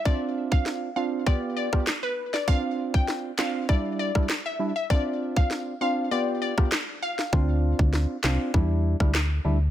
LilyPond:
<<
  \new Staff \with { instrumentName = "Synth pluck" } { \time 4/4 \key d \dorian \tempo 4 = 99 d''16 r8 f''16 r8 f''16 r16 d''16 r16 d''16 r8 b'16 r16 d''16 | f''16 r8 g''16 r8 f''16 r16 d''16 r16 d''16 r8 e''16 r16 e''16 | d''16 r8 f''16 r8 f''16 r16 d''16 r16 d''16 r8. f''16 r16 | r1 | }
  \new Staff \with { instrumentName = "Synth stab" } { \time 4/4 \key d \dorian <c' d' f'>4. <c' d' f'>8 <b f' g'>8. <b f' g'>16 r4 | <c' d' f'>4. <c' d' f'>8 <g d' e'>8. <g d' e'>16 r8 <g d' e'>16 r16 | <c' d' f'>4. <c' d' f'>8 <b f' g'>8. <b f' g'>16 r4 | <c' d' f'>4. <c' d' f'>8 <g d' e'>8. <g d' e'>16 r8 <g d' e'>16 r16 | }
  \new Staff \with { instrumentName = "FM bass" } { \clef bass \time 4/4 \key d \dorian r1 | r1 | r1 | d,8. d,8 r16 c,16 r16 e,8. d,8. d,8 | }
  \new DrumStaff \with { instrumentName = "Drums" } \drummode { \time 4/4 bd8. bd16 sn4 bd8. <bd ss>16 <hc sn>8. sn16 | bd8. bd16 sn8 <hc sn>8 bd8. <bd ss>16 <hc sn>4 | bd8. bd16 sn4 r8. <bd ss>16 <hc sn>8. sn16 | bd8. bd16 sn8 <hc sn>8 bd8. <bd ss>16 <hc sn>4 | }
>>